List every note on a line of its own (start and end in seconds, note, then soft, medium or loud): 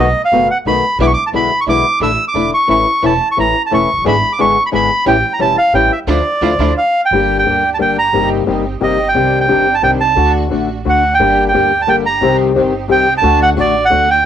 0.00 0.12 B1 medium
0.00 0.12 A3 medium
0.00 0.12 B3 medium
0.00 0.12 D#4 medium
0.00 0.22 D#5 medium
0.25 0.48 F5 medium
0.32 0.46 F#1 soft
0.32 0.48 B2 medium
0.32 0.49 D#3 soft
0.32 0.46 A3 soft
0.32 0.49 A3 medium
0.32 0.46 B3 soft
0.32 0.49 B3 medium
0.32 0.46 D#4 soft
0.32 0.49 F#4 medium
0.51 0.58 F#5 medium
0.65 0.79 B1 medium
0.65 0.82 B2 medium
0.65 0.83 D#3 medium
0.65 0.80 A3 soft
0.65 0.83 A3 medium
0.65 0.80 B3 soft
0.65 0.83 B3 medium
0.65 0.80 D#4 medium
0.65 0.83 F#4 medium
0.65 0.98 B5 medium
0.99 1.13 B1 medium
0.99 1.08 B2 medium
0.99 1.09 D3 medium
0.99 1.13 G#3 medium
0.99 1.09 G#3 medium
0.99 1.09 B3 medium
0.99 1.14 D4 medium
0.99 1.14 E4 medium
0.99 1.09 E4 medium
0.99 1.06 D6 medium
1.07 1.12 C#6 medium
1.13 1.24 D6 medium
1.27 1.30 A5 medium
1.33 1.47 B1 soft
1.33 1.50 B2 medium
1.33 1.50 D3 medium
1.33 1.47 G#3 soft
1.33 1.50 G#3 medium
1.33 1.50 B3 medium
1.33 1.47 D4 soft
1.33 1.47 E4 soft
1.33 1.50 E4 medium
1.33 1.60 B5 medium
1.61 1.64 C#6 medium
1.66 1.81 B1 medium
1.66 1.84 B2 medium
1.66 1.84 D3 medium
1.66 1.80 G#3 soft
1.66 1.84 G#3 medium
1.66 1.84 B3 medium
1.66 1.81 D4 soft
1.66 1.81 E4 medium
1.66 1.84 E4 medium
1.66 1.99 D6 loud
2.00 2.14 A1 medium
2.00 2.10 D3 medium
2.00 2.15 A3 medium
2.00 2.10 A3 medium
2.00 2.15 D4 soft
2.00 2.10 D4 medium
2.00 2.15 E4 medium
2.00 2.10 E4 medium
2.00 2.25 E6 medium
2.28 2.51 D6 medium
2.34 2.48 E1 soft
2.34 2.51 D3 medium
2.34 2.48 A3 soft
2.34 2.52 A3 medium
2.34 2.49 D4 soft
2.34 2.52 D4 medium
2.34 2.49 E4 soft
2.34 2.52 E4 medium
2.54 2.69 C#6 medium
2.67 2.83 A1 medium
2.67 2.85 E3 soft
2.67 2.85 A3 medium
2.67 2.83 A3 soft
2.67 2.85 C#4 medium
2.67 2.83 C#4 soft
2.67 2.83 E4 soft
2.67 2.86 E4 medium
2.67 3.05 C#6 medium
3.02 3.17 E1 medium
3.02 3.12 E3 medium
3.02 3.17 A3 medium
3.02 3.12 A3 medium
3.02 3.12 C#4 medium
3.02 3.17 C#4 medium
3.02 3.17 E4 medium
3.02 3.12 E4 medium
3.02 3.28 A5 medium
3.31 3.38 C#6 medium
3.37 3.52 A1 soft
3.37 3.54 E3 medium
3.37 3.54 A3 medium
3.37 3.52 A3 soft
3.37 3.54 C#4 medium
3.37 3.52 C#4 soft
3.37 3.54 E4 medium
3.37 3.52 E4 soft
3.37 3.63 A#5 medium
3.66 3.72 A5 medium
3.71 3.86 E1 medium
3.71 3.88 E3 medium
3.71 3.88 A3 medium
3.71 3.86 A3 soft
3.71 3.88 C#4 medium
3.71 3.86 C#4 soft
3.71 3.88 E4 medium
3.71 3.86 E4 soft
3.71 4.04 C#6 medium
3.93 3.97 F1 soft
3.98 4.01 F#1 soft
4.02 4.06 G1 medium
4.02 4.14 D3 medium
4.02 4.14 G#3 medium
4.02 4.20 G#3 medium
4.02 4.14 B3 medium
4.02 4.20 D4 medium
4.02 4.14 E4 medium
4.02 4.14 G#4 medium
4.06 4.20 G#1 medium
4.06 4.20 E4 medium
4.06 4.33 B5 medium
4.32 4.40 D6 medium
4.39 4.54 G#1 soft
4.39 4.56 D3 medium
4.39 4.56 G#3 medium
4.39 4.53 G#3 soft
4.39 4.56 B3 medium
4.39 4.53 D4 soft
4.39 4.56 E4 medium
4.39 4.53 E4 soft
4.39 4.56 G#4 medium
4.39 4.63 C#6 medium
4.66 4.69 B5 medium
4.72 4.87 G#1 medium
4.72 4.89 D3 medium
4.72 4.86 G#3 soft
4.72 4.89 G#3 medium
4.72 4.89 B3 medium
4.72 4.86 D4 soft
4.72 4.89 E4 medium
4.72 4.87 E4 medium
4.72 4.89 G#4 medium
4.72 5.05 B5 medium
5.06 5.20 A1 medium
5.06 5.15 E3 medium
5.06 5.15 G3 medium
5.06 5.20 A3 medium
5.06 5.20 C#4 medium
5.06 5.15 C#4 medium
5.06 5.15 E4 medium
5.06 5.20 G4 medium
5.06 5.33 G5 medium
5.33 5.40 A#5 medium
5.39 5.54 E1 medium
5.39 5.56 E3 medium
5.39 5.56 G3 medium
5.39 5.54 A3 soft
5.39 5.54 C#4 soft
5.39 5.57 C#4 medium
5.39 5.57 E4 medium
5.39 5.54 G4 soft
5.39 5.56 A5 medium
5.58 5.73 F5 medium
5.73 5.88 A1 medium
5.73 5.90 E3 medium
5.73 5.91 G3 medium
5.73 5.88 A3 soft
5.73 5.88 C#4 soft
5.73 5.91 C#4 medium
5.73 5.91 E4 medium
5.73 5.88 G4 medium
5.73 5.92 G5 medium
5.92 6.00 E5 medium
6.07 6.20 D2 medium
6.07 6.18 F3 medium
6.07 6.19 A3 medium
6.07 6.19 D4 medium
6.07 6.19 E4 medium
6.07 6.19 F4 medium
6.07 6.73 D5 medium
6.41 6.54 D2 medium
6.41 6.53 F3 medium
6.41 6.53 A3 medium
6.41 6.53 D4 medium
6.41 6.53 E4 medium
6.41 6.53 F4 medium
6.59 6.72 D2 medium
6.59 6.70 F3 medium
6.59 6.71 A3 medium
6.59 6.70 D4 medium
6.59 6.71 D4 medium
6.59 6.70 E4 medium
6.59 6.70 F4 medium
6.78 7.01 F5 medium
7.05 7.37 G5 medium
7.11 7.44 G1 medium
7.11 7.45 D3 medium
7.11 7.45 G3 medium
7.11 7.44 A#3 medium
7.11 7.45 A#3 medium
7.11 7.44 D4 soft
7.11 7.45 D4 medium
7.11 7.44 G4 medium
7.11 7.46 G4 medium
7.39 7.70 G5 medium
7.46 7.78 D2 soft
7.46 7.63 D3 soft
7.46 7.63 G3 medium
7.46 7.78 A#3 soft
7.46 7.63 A#3 medium
7.46 7.78 D4 soft
7.46 7.63 D4 medium
7.46 7.78 G4 soft
7.46 7.63 G4 medium
7.74 7.77 A5 medium
7.79 8.12 G1 soft
7.79 7.96 D3 medium
7.79 7.96 G3 medium
7.79 7.96 A#3 medium
7.79 8.12 A#3 soft
7.79 7.96 D4 medium
7.79 8.12 D4 soft
7.79 7.97 G4 medium
7.79 8.13 G4 soft
7.79 7.97 G5 medium
7.98 8.29 A#5 medium
8.13 8.46 G1 medium
8.13 8.45 C3 medium
8.13 8.46 G3 medium
8.13 8.46 A#3 medium
8.13 8.46 C4 soft
8.13 8.46 D#4 soft
8.13 8.46 D#4 medium
8.13 8.46 G4 medium
8.46 8.79 G1 soft
8.46 8.64 C3 soft
8.46 8.64 G3 medium
8.46 8.64 A#3 medium
8.46 8.80 C4 soft
8.46 8.64 D#4 medium
8.46 8.80 D#4 soft
8.46 8.64 G4 medium
8.46 8.80 G4 soft
8.81 9.13 G1 soft
8.81 8.97 C3 medium
8.81 8.98 G3 medium
8.81 8.98 A#3 medium
8.81 9.13 C4 soft
8.81 8.98 D#4 medium
8.81 9.13 D#4 soft
8.81 8.98 G4 medium
8.81 9.13 G4 soft
8.81 9.08 D#5 medium
9.08 9.39 G5 medium
9.14 9.47 C2 medium
9.14 9.47 C3 medium
9.14 9.47 D#3 medium
9.14 9.48 G3 medium
9.14 9.46 C4 soft
9.14 9.46 D4 medium
9.14 9.48 D4 medium
9.14 9.48 G4 medium
9.41 9.75 G5 medium
9.48 9.81 G1 soft
9.48 9.65 C3 medium
9.48 9.65 D#3 medium
9.48 9.65 G3 medium
9.48 9.81 C4 soft
9.48 9.81 D4 soft
9.48 9.65 D4 medium
9.48 9.81 D#4 soft
9.48 9.66 G4 medium
9.74 9.82 A5 medium
9.82 10.15 C2 soft
9.82 9.99 C3 medium
9.82 10.00 D#3 medium
9.82 10.00 G3 medium
9.82 10.15 C4 soft
9.82 10.15 D4 soft
9.82 10.00 D4 medium
9.82 10.15 D#4 soft
9.82 10.00 G4 medium
9.82 9.91 G5 loud
10.01 10.32 A5 medium
10.15 10.49 D2 medium
10.15 10.49 D3 medium
10.15 10.50 A3 medium
10.15 10.49 A3 medium
10.15 10.50 D4 medium
10.15 10.49 D4 medium
10.15 10.50 F#4 medium
10.15 10.49 F#4 medium
10.50 10.84 A1 soft
10.50 10.68 D3 medium
10.50 10.68 A3 medium
10.50 10.84 A3 soft
10.50 10.68 D4 medium
10.50 10.84 D4 soft
10.50 10.84 F#4 soft
10.50 10.68 F#4 medium
10.85 11.18 D2 soft
10.85 11.02 D3 medium
10.85 11.18 A3 soft
10.85 11.02 A3 medium
10.85 11.18 D4 soft
10.85 11.03 D4 medium
10.85 11.18 F#4 soft
10.85 11.03 F#4 medium
10.89 11.14 F#5 medium
11.14 11.44 G5 medium
11.19 11.52 G1 medium
11.19 11.52 D3 medium
11.19 11.52 G3 medium
11.19 11.52 A#3 medium
11.19 11.53 A#3 medium
11.19 11.52 D4 soft
11.19 11.53 D4 medium
11.19 11.52 G4 medium
11.19 11.53 G4 medium
11.48 11.82 G5 medium
11.53 11.86 D2 soft
11.53 11.70 D3 medium
11.53 11.71 G3 medium
11.53 11.86 A#3 soft
11.53 11.71 A#3 medium
11.53 11.86 D4 soft
11.53 11.71 D4 medium
11.53 11.86 G4 soft
11.53 11.71 G4 medium
11.81 11.89 A5 medium
11.87 12.20 G1 soft
11.87 12.04 D3 medium
11.87 12.04 G3 medium
11.87 12.20 A#3 soft
11.87 12.04 A#3 medium
11.87 12.04 D4 medium
11.87 12.20 D4 soft
11.87 12.05 G4 medium
11.87 12.20 G4 soft
11.87 11.96 G5 medium
12.06 12.37 A#5 medium
12.21 12.54 C2 medium
12.21 12.54 C3 medium
12.21 12.54 D#3 medium
12.21 12.54 G3 medium
12.21 12.54 C4 medium
12.21 12.55 C4 medium
12.21 12.54 D#4 medium
12.21 12.54 G4 medium
12.21 12.55 G4 medium
12.55 12.88 G1 soft
12.55 12.72 C3 medium
12.55 12.72 D#3 medium
12.55 12.72 G3 medium
12.55 12.72 C4 medium
12.55 12.88 C4 soft
12.55 12.88 D#4 soft
12.55 12.72 G4 medium
12.55 12.88 G4 soft
12.88 13.21 C2 soft
12.88 13.05 C3 medium
12.88 13.05 D#3 medium
12.88 13.06 G3 medium
12.88 13.06 C4 medium
12.88 13.21 C4 soft
12.88 13.21 D#4 soft
12.88 13.06 G4 medium
12.88 13.21 G4 medium
12.88 13.14 G5 loud
13.18 13.40 A5 loud
13.22 13.55 D2 medium
13.22 13.56 D3 medium
13.22 13.55 A3 medium
13.22 13.56 D4 medium
13.22 13.55 D4 medium
13.22 13.56 F#4 medium
13.43 13.50 F#5 medium
13.57 13.89 A1 soft
13.57 13.74 D3 medium
13.57 13.73 A3 medium
13.57 13.89 A3 soft
13.57 13.74 D4 medium
13.57 13.89 D4 soft
13.57 13.74 F#4 medium
13.57 13.89 F#4 soft
13.57 13.85 D5 medium
13.85 14.10 F#5 medium
13.90 14.23 D2 soft
13.90 14.07 D3 medium
13.90 14.07 A3 medium
13.90 14.23 A3 soft
13.90 14.23 D4 soft
13.90 14.08 D4 medium
13.90 14.23 F#4 soft
13.90 14.08 F#4 medium
14.10 14.26 G5 medium